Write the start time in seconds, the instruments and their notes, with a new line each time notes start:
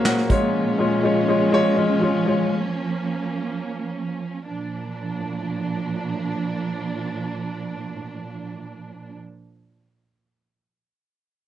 Already playing: grand piano A#2 A#3 F#4 G#4 C5 C#5 F5, string section A#2 F#3 A#3 C#4
0.05 grand piano C#5 F#5, snare, clap, closed hi-hat
0.17 snare
0.30 grand piano A#2 G#3 F4 C#5, string section F3 G#3, kick, closed hi-hat
0.78 grand piano G#3 F4 C#5
1.03 grand piano G#3 F4 C#5
1.28 grand piano G#3 F4 C#5
1.52 grand piano G#3 F4 C#5
1.76 grand piano G#3 F4 C#5
2.01 grand piano G#3 F4 C#5
2.26 grand piano G#3 F4 C#5
2.52 string section A#3
4.48 string section A#2 F3 D4